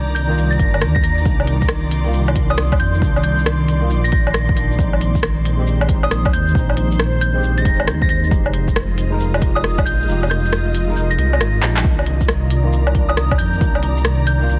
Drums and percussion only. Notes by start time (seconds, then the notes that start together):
0.16 open hi-hat, shaker
0.38 shaker
0.53 open hi-hat
0.59 kick, open hi-hat
0.74 low woodblock
0.81 cross-stick, shaker
0.96 kick
1.04 open hi-hat
1.18 shaker
1.25 kick, shaker
1.40 low woodblock
1.47 open hi-hat
1.62 kick, shaker
1.69 cross-stick, shaker
1.91 open hi-hat, shaker
2.13 shaker
2.28 low woodblock
2.36 kick, open hi-hat
2.50 low woodblock
2.58 cross-stick, shaker
2.72 kick, low woodblock
2.80 open hi-hat
2.94 shaker
3.02 kick, shaker
3.16 low woodblock
3.24 open hi-hat
3.38 shaker
3.46 cross-stick, shaker
3.68 open hi-hat, shaker
3.90 shaker
4.05 open hi-hat
4.12 kick, open hi-hat
4.27 low woodblock
4.34 cross-stick, shaker
4.49 kick
4.57 open hi-hat
4.71 shaker
4.79 kick, shaker
4.93 low woodblock
5.01 open hi-hat
5.15 kick, shaker
5.23 cross-stick, shaker
5.45 open hi-hat, shaker
5.67 shaker
5.81 low woodblock
5.89 kick, open hi-hat
6.03 low woodblock
6.11 cross-stick, shaker
6.25 kick, low woodblock
6.34 open hi-hat
6.48 shaker
6.55 kick, shaker
6.70 low woodblock
6.77 open hi-hat
6.92 shaker
7.00 cross-stick, shaker
7.21 open hi-hat, shaker
7.43 shaker
7.58 open hi-hat
7.65 kick, open hi-hat
7.80 low woodblock
7.88 cross-stick, shaker
8.02 kick
8.09 open hi-hat
8.24 shaker
8.31 kick, shaker
8.46 low woodblock
8.54 open hi-hat
8.68 kick, shaker
8.76 cross-stick, shaker
8.98 open hi-hat, shaker
9.20 shaker
9.34 low woodblock
9.42 kick, open hi-hat
9.56 low woodblock
9.64 cross-stick, shaker
9.78 kick, low woodblock
9.87 open hi-hat
10.01 shaker
10.09 shaker
10.23 low woodblock
10.31 cross-stick, open hi-hat
10.45 shaker
10.53 cross-stick, shaker
10.75 open hi-hat, shaker
10.97 shaker
11.11 open hi-hat
11.19 open hi-hat
11.33 low woodblock
11.41 cross-stick, shaker
11.63 clap, open hi-hat
11.76 clap, shaker
11.84 kick, shaker
11.99 low woodblock
12.06 open hi-hat
12.21 kick, shaker
12.28 cross-stick, shaker
12.50 open hi-hat, shaker
12.73 shaker
12.87 low woodblock
12.95 kick, open hi-hat
13.09 low woodblock
13.17 cross-stick, shaker
13.31 kick, low woodblock
13.39 open hi-hat
13.53 shaker
13.61 kick, shaker
13.75 low woodblock
13.83 open hi-hat
13.97 shaker
14.05 cross-stick, shaker
14.27 open hi-hat, shaker
14.49 shaker